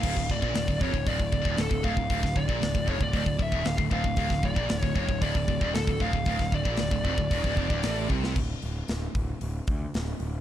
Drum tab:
CC |x---------------|----------------|----------------|----------------|
HH |----o---o---o---|o---o---o---o---|o---o---o---o---|o---o---o---o---|
SD |-o--o-------o---|-o--o-------o---|-o--o-------o---|-o--o-------o--o|
BD |oooo-ooooooo-ooo|oooo-ooooooo-ooo|oooo-ooooooo-ooo|oooo-ooooooo--o-|

CC |x---------------|
HH |--o-o-o-o-o-o-o-|
SD |----o-------o---|
BD |o-----o---o-----|